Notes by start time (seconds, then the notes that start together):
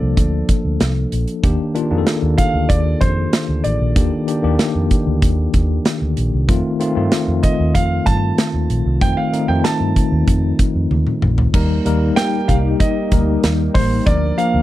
Already playing: F3 A#3 D4 A4 D5
0.02 C2
0.17 D2, kick, closed hi-hat
0.49 muted fingered electric bass stroke, kick, closed hi-hat
0.65 D2
0.80 C2, snare, closed hi-hat
1.12 A#1, closed hi-hat
1.28 closed hi-hat
1.43 D#2 D#3 A#3 D4 G4, kick, closed hi-hat
1.74 D#3 A#3 D4 F4, closed hi-hat
1.90 F2 D#3 A#3 D4 G#4
1.98 A4
2.07 snare, closed hi-hat
2.22 D#2
2.38 F5, kick, closed hi-hat
2.54 D2
2.69 D#2 D5, kick, closed hi-hat
3.01 F2 C5, kick, closed hi-hat
3.33 snare, closed hi-hat
3.49 D2
3.64 A1 D5, closed hi-hat
3.80 A#1
3.95 D#2 D#3 A#3 D4 G4, kick, closed hi-hat
4.27 D#3 A#3 D4 G4, closed hi-hat
4.43 D#2 D#3 A#3 D4 G4
4.59 snare, closed hi-hat
4.75 F2
4.91 kick, closed hi-hat
5.07 D2
5.22 D#2, kick, closed hi-hat
5.54 D#2, kick, closed hi-hat
5.85 snare, closed hi-hat
6.02 D2
6.17 A#1, closed hi-hat
6.33 C2
6.48 F2 D#3 A3 C4 F4, kick, closed hi-hat
6.79 D#3 A3 C4 F4, closed hi-hat
6.96 G2 D#3 A3 C4 F4
7.12 snare, closed hi-hat
7.28 F2
7.43 D#5, kick, closed hi-hat
7.59 D#2
7.75 F2 F5, kick, closed hi-hat
8.06 G2 A5, kick, closed hi-hat
8.38 snare, closed hi-hat
8.54 D#2
8.70 A#1, closed hi-hat
8.86 C2
9.01 F2 D#3 A3 C4 D#4 G5, kick, closed hi-hat
9.17 F5
9.33 D#3 A3 C4 D#4, closed hi-hat
9.48 F2 D#3 A3 C4 D#4 G5
9.56 F4
9.64 A5, snare, closed hi-hat
9.80 G2
9.96 kick, closed hi-hat
10.12 D#2
10.28 F2, kick, closed hi-hat
10.59 muted fingered electric bass stroke, kick, closed hi-hat
10.75 F2
10.91 D#2, high tom
11.07 mid tom
11.22 A#1, mid tom
11.38 floor tom
11.54 D#2 G3 A#3 D#4 G4 A#4, kick, crash
11.85 D#2 G3 A#3 D#4 A#4, closed hi-hat
12.16 G5, snare, closed hi-hat
12.48 C2 F5, kick, closed hi-hat
12.80 D#5, kick, closed hi-hat
13.12 D2 G3 A#3 D#4 A#4, kick, closed hi-hat
13.44 D#2, snare, closed hi-hat
13.74 A1 C5, kick, open hi-hat
14.06 D2 F3 A#3 D4 F4 A#4 D5, kick, closed hi-hat
14.37 F3 A#3 D4 A#4 F5, closed hi-hat
14.54 D2